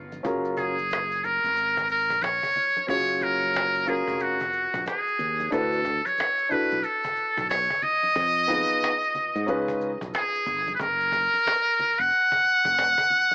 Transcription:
Already playing: G1
0.12 high conga, maracas
0.23 F#1 C#4 F4 F#4 G#4 A#4, cajon bass, maracas
0.45 maracas
0.57 G#4, cajon bass, low conga, maracas
0.79 high conga, maracas
0.91 cajon slap, high conga, maracas
1.11 maracas
1.24 A#4, cajon slap, low conga, maracas
1.44 G#1, cajon slap, maracas
1.57 cajon slap, maracas
1.77 cajon bass, maracas
1.89 A#4, cajon slap, maracas
2.10 A#1, cajon bass, high conga, maracas
2.22 C#5, cajon slap, high conga, maracas
2.43 cajon bass, maracas
2.56 cajon slap, low conga, maracas
2.77 high conga, maracas
2.87 F#1 C#4 F4 F#4 G#4 C#5, cajon bass, maracas
3.09 maracas
3.21 A#4, cajon bass, low conga, maracas
3.42 high conga, maracas
3.54 cajon slap, high conga, maracas
3.75 maracas
3.86 C#4 F4 F#4 G#4 A#4, low conga, maracas
4.08 F1, cajon bass, maracas
4.20 F#4, cajon slap, maracas
4.40 cajon bass, maracas
4.53 cajon slap, maracas
4.74 A#1, cajon bass, high conga, maracas
4.86 G#4, cajon slap, high conga, maracas
5.07 maracas
5.19 D#2, low conga, maracas
5.40 high conga, maracas
5.51 D2 D4 E4 F#4 A4 B4, cajon bass, maracas
5.72 maracas
5.84 cajon bass, low conga, maracas
6.06 C#5, cajon slap, high conga, maracas
6.18 cajon slap, high conga, maracas
6.39 maracas
6.49 D4 E4 F#4 A4 B4, cajon slap, low conga, maracas
6.71 B1, maracas
6.83 A4, cajon slap, maracas
7.03 cajon bass, maracas
7.16 maracas
7.37 B1, cajon bass, high conga, maracas
7.49 C#5, cajon slap, maracas
7.70 cajon bass, maracas
7.82 D#5, cajon slap, low conga, maracas
8.03 high conga, maracas
8.16 F2, cajon bass, maracas
8.36 maracas
8.47 B3 D#4 F4 G#4 B4, cajon bass, low conga, maracas
8.70 high conga, maracas
8.82 cajon slap, high conga, maracas
9.03 maracas
9.14 cajon slap, low conga, maracas
9.36 G#2, cajon slap, maracas
9.46 C#2 C#4 D#4 F4 G#4 B4, cajon slap, maracas
9.68 cajon bass, maracas
9.80 cajon slap, maracas
10.01 B1, cajon bass, high conga, maracas
10.14 G#4, cajon slap, maracas
10.35 maracas
10.46 G1, cajon slap, low conga, maracas
10.68 high conga, maracas
10.75 B4
10.79 F#1 A#4, cajon bass, maracas
11.00 maracas
11.12 cajon bass, low conga, maracas
11.33 cajon slap, high conga, maracas
11.46 cajon slap, high conga, maracas
11.67 maracas
11.78 cajon slap, low conga, maracas
11.99 F1 F#5, cajon slap, maracas
12.11 cajon slap, maracas
12.32 cajon bass, maracas
12.44 cajon slap, maracas
12.65 F1, cajon bass, high conga, maracas
12.77 cajon slap, maracas
12.98 cajon bass, maracas
13.10 cajon slap, low conga, maracas
13.31 high conga, maracas

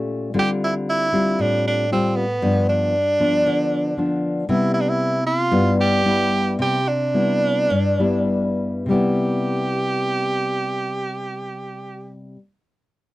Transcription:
Already playing: A#2 A3 C#4 G4
0.34 D3 G3 C4 F4
0.39 G4
0.64 E4
0.90 E4
1.12 G3 C4 F4
1.39 A2 D4
1.67 D4
1.91 G3 C4 F4
2.16 B3
2.42 G2 F3 B3 D4
2.69 D4
3.20 F3 B3 D4
3.46 D3
3.97 F3 B3 D4
4.49 C3 G3 B3 E4
4.74 E4
4.81 D4
4.89 E4
5.27 F4
5.51 G2 G3 B3 E4
5.81 G4
6.05 G3 B3 E4
6.59 C3 G4
6.88 D4
7.14 G3 B3 E4
7.70 G2
7.99 G3 B3 E4
8.86 C3 G3
8.91 B3 E4 G4

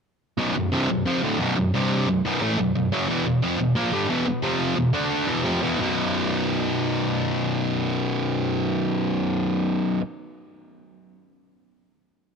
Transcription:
0.38 B1 F#2 B2
0.55 B1 F#2
0.72 C2 G2 C3
0.89 B1 F#2
1.06 F2 C3 F3
1.23 D2 A2 D3
1.39 B1 F#2 B2
1.56 B1 F#2
1.74 C2 G2 C3
2.08 B1 F#2
2.25 B1 F#2 B2
2.42 A2 E3 A3
2.59 B1 F#2
2.76 B1 F#2
2.92 F#2 C#3 F#3
3.09 E2 B2 E3
3.26 E2 B2
3.42 F2 C3 F3
3.59 E2 B2
3.75 A#2 F3 A#3
3.92 G2 D3 G3
4.08 E2 B2 E3
4.26 E2 B2
4.42 F2 C3 F3
4.76 E2 B2
4.93 D3 A3 D4
5.27 E2 B2 E3
5.44 F2 C3 F3
5.62 E2 B2 E3
5.77 B1 F#2
5.81 B2

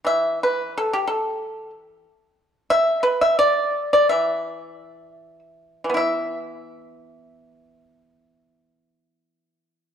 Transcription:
0.05 E3 E5
0.43 B4
0.78 A4
0.93 G4
1.07 A4
2.70 E5
3.03 B4
3.21 E5
3.39 D5
3.93 D5
4.09 E3 E5
5.84 E3
5.90 B3
5.94 E4 E5

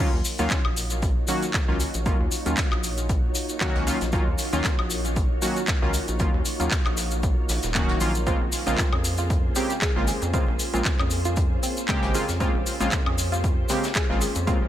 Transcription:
0.00 A#3 D#4 F4 F#4 C#5
0.13 D#2
0.25 open hi-hat, shaker
0.39 D#2 D#3 F#3 A#3 C#4 F4, snare, closed hi-hat, shaker
0.50 kick, snare, clap, closed hi-hat, shaker
0.65 A#1, high woodblock
0.76 closed hi-hat, open hi-hat, shaker
0.90 closed hi-hat, shaker
1.02 kick, closed hi-hat, shaker
1.28 D#3 F#3 A#3 C#4 F#4, closed hi-hat, open hi-hat, shaker
1.42 snare, closed hi-hat, shaker
1.54 kick, snare, clap, closed hi-hat, shaker
1.68 C#2 D#3 F#3 A#3 C#4 F4, snare
1.80 closed hi-hat, open hi-hat, shaker
1.94 A#1, closed hi-hat, shaker
2.06 D#3 F#3 A#3 C#4 F4, kick, closed hi-hat, shaker
2.20 D#2
2.31 closed hi-hat, open hi-hat, shaker
2.46 D#2 D#3 F#3 A#3 C#4 F4, closed hi-hat, shaker
2.57 kick, snare, clap, closed hi-hat, shaker
2.71 A#1, clap, high woodblock
2.83 closed hi-hat, open hi-hat, shaker
2.97 closed hi-hat, shaker
3.09 kick, closed hi-hat, shaker
3.35 closed hi-hat, open hi-hat, shaker
3.49 closed hi-hat, shaker
3.61 D#3 F#3 A#3 C#4 F#4, kick, snare, clap, closed hi-hat, shaker
3.75 C#2, snare, closed hi-hat
3.87 D#3 F#3 A#3 C#4 F4, snare, closed hi-hat, open hi-hat, shaker
4.01 A#1, snare, closed hi-hat, shaker
4.12 D#3 F#3 A#3 C#4 F4, kick, closed hi-hat, shaker
4.27 D#2
4.38 open hi-hat, shaker
4.53 D#2 D#3 F#3 A#3 C#4 F4, snare, closed hi-hat, shaker
4.64 kick, snare, clap, closed hi-hat, shaker
4.79 A#1, high woodblock
4.90 closed hi-hat, open hi-hat, shaker
5.05 closed hi-hat, shaker
5.16 kick, closed hi-hat, shaker
5.42 D#3 F#3 A#3 C#4 F#4, closed hi-hat, open hi-hat, shaker
5.56 snare, closed hi-hat, shaker
5.68 kick, snare, clap, closed hi-hat, shaker
5.82 C#2 D#3 F#3 A#3 C#4 F4, snare
5.93 closed hi-hat, open hi-hat, shaker
6.08 A#1, closed hi-hat, shaker
6.19 D#3 F#3 A#3 C#4 F4, kick, closed hi-hat, shaker
6.34 D#2
6.45 closed hi-hat, open hi-hat, shaker
6.60 D#2 D#3 F#3 A#3 C#4 F4, closed hi-hat, shaker
6.71 kick, snare, clap, closed hi-hat, shaker
6.85 A#1, clap, high woodblock
6.97 snare, closed hi-hat, open hi-hat, shaker
7.11 closed hi-hat, shaker
7.23 kick, closed hi-hat, shaker
7.49 A#1, snare, closed hi-hat, open hi-hat, shaker
7.62 D#1, snare, closed hi-hat, shaker
7.75 D#3 F#3 A#3 C#4 F#4, kick, snare, clap, closed hi-hat, shaker
7.89 snare, closed hi-hat
8.00 A#1 D#3 F#3 A#3 C#4 F4, closed hi-hat, open hi-hat, shaker
8.15 closed hi-hat, shaker
8.26 C#3 G#3 A#3 C4 C#4 F4 G#4 C5, kick, closed hi-hat, shaker
8.41 A#1
8.52 open hi-hat, shaker
8.66 A#1 C#3 G#3 A#3 C4 C#4 F4, snare, closed hi-hat, shaker
8.78 kick, snare, clap, closed hi-hat, shaker
8.93 F2 C#4, high woodblock
9.04 closed hi-hat, open hi-hat, shaker
9.18 F4, closed hi-hat, shaker
9.30 kick, closed hi-hat, shaker
9.56 C#3 G#3 A#3 C4 G4, closed hi-hat, open hi-hat, shaker
9.70 snare, closed hi-hat, shaker
9.82 G#4, kick, snare, clap, closed hi-hat, shaker
9.96 G#1 C#3 G#3 A#3 C4 F4, snare
10.07 G#4, closed hi-hat, open hi-hat, shaker
10.22 F2, closed hi-hat, shaker
10.33 C#3 G#3 A#3 C4 F4, kick, closed hi-hat, shaker
10.48 A#1
10.59 closed hi-hat, open hi-hat, shaker
10.73 A#1 C#3 G#3 A#3 C4 C#4 F4, closed hi-hat, shaker
10.85 kick, snare, clap, closed hi-hat, shaker
10.99 F2 C#4, clap, high woodblock
11.10 closed hi-hat, open hi-hat, shaker
11.25 F4, closed hi-hat, shaker
11.36 kick, closed hi-hat, shaker
11.63 C4, closed hi-hat, open hi-hat, shaker
11.77 closed hi-hat, shaker
11.88 C#3 G#3 A#3 C4 G4 G#4, kick, snare, clap, closed hi-hat, shaker
12.02 G#1, snare, closed hi-hat
12.14 C#3 G#3 A#3 C4 F4 G#4, snare, closed hi-hat, open hi-hat, shaker
12.29 F2, snare, closed hi-hat, shaker
12.40 C#3 G#3 A#3 C4 F4 G4, kick, closed hi-hat, shaker
12.55 A#1
12.66 open hi-hat, shaker
12.80 A#1 C#3 G#3 A#3 C4 C#4 F4, snare, closed hi-hat, shaker
12.91 kick, snare, clap, closed hi-hat, shaker
13.06 F2 C#4, high woodblock
13.18 closed hi-hat, open hi-hat, shaker
13.32 F4, closed hi-hat, shaker
13.44 kick, closed hi-hat, shaker
13.69 C#3 G#3 A#3 C4 G4, snare, closed hi-hat, open hi-hat, shaker
13.84 snare, closed hi-hat, shaker
13.95 G#4, kick, snare, clap, closed hi-hat, shaker
14.10 G#1 C#3 G#3 A#3 C4 F4, snare
14.21 G#4, closed hi-hat, open hi-hat, shaker
14.35 F2, closed hi-hat, shaker
14.47 C#3 G#3 A#3 C4 F4, kick, closed hi-hat, shaker
14.62 A#1

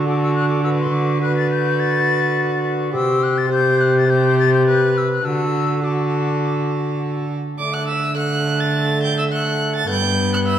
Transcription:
Already playing: D3
0.06 F#4 A4 D6
0.22 E6
0.35 F#6
0.49 D6
0.64 F#4 B4 E6
0.80 C6
0.93 D6
1.21 F#4 B4 F#6
1.37 A6
1.51 G6
1.80 A6
2.93 C3 G4 C5 E6
3.23 F#6
3.38 A6
3.50 G4 C5 G6
3.81 F#6
3.98 A6
4.08 G4 C5 G6
4.39 A6
4.54 G6
4.66 B4 F#6
4.98 E6
5.13 F#6
5.24 D3 F#4 A4 E6
5.83 F#4 A4 D6
7.58 D3 A3 D5 D6
7.72 F#5 F#6
7.86 E5 E6
8.15 A3 F#5 F#6
8.58 A5 A6
9.03 G5 G6
9.18 E5 E6
9.31 A3 F#5 F#6
9.76 A5 A6
9.89 G2 B3 G5 G6
10.33 F#5 F#6
10.46 E5 E6

